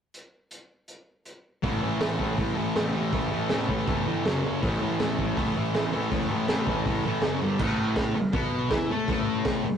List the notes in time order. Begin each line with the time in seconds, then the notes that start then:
0.14 closed hi-hat
0.51 closed hi-hat
0.88 closed hi-hat
1.25 closed hi-hat
1.63 A1 A2 E3 A3, kick, open hi-hat
1.82 A1 A2 E3 A3
2.00 A1 A2 E3 A3, snare, open hi-hat
2.19 A1 A2 E3 A3, kick
2.38 A1 A2 E3 A3, kick, open hi-hat
2.56 A2 E3 A3
2.75 A1 A2 E3 A3, snare, open hi-hat
2.93 A1 A2 E3 A3
3.12 A1 A2 E3 A3, kick, open hi-hat
3.31 A1 A2 E3 A3
3.49 A1 A2 E3 A3, snare, open hi-hat
3.68 A1 A2 E3 A3, kick
3.87 G1 A2 E3 A3, kick, open hi-hat
4.06 A2 E3 A3
4.25 F#1 F#2 C#3 F#3, snare, open hi-hat
4.43 F#1 F#2 C#3 F#3
4.62 A1 A2 E3 A3, kick, open hi-hat
4.80 A1 A2 E3 A3
5.00 A1 A2 E3 A3, snare, open hi-hat
5.19 A1 A2 E3 A3, kick
5.36 A1 A2 E3 A3, kick, open hi-hat
5.56 A2 E3 A3
5.74 A1 A2 E3 A3, snare, open hi-hat
5.93 A1 A2 E3 A3
6.11 A1 A2 E3 A3, kick, open hi-hat
6.29 A1 A2 E3 A3
6.48 A1 A2 E3 A3, snare, open hi-hat
6.67 A1 A2 E3 A3, kick
6.85 A1 A2 E3 A3, kick, open hi-hat
7.05 A2 E3 A3
7.22 F#1 F#2 C#3 F#3, snare, open hi-hat
7.41 G1 G2 D3 G3
7.59 A1 A2 A3, kick, crash
7.96 kick, snare, open hi-hat
8.16 A1, muted distorted electric guitar stroke
8.33 B1 B2 B3, kick, open hi-hat
8.71 E2 E3 E4, kick, snare, open hi-hat
8.90 A2 A3 A4
9.08 A1 A2 A3, kick, open hi-hat
9.45 kick, snare, open hi-hat
9.65 A1, muted distorted electric guitar stroke